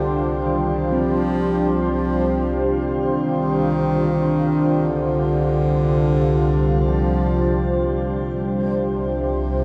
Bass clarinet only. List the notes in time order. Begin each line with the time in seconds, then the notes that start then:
Already playing: D3
0.41 D#3
0.91 F3
1.91 F3
2.91 D#3
4.89 D3
6.87 F3
8.87 C3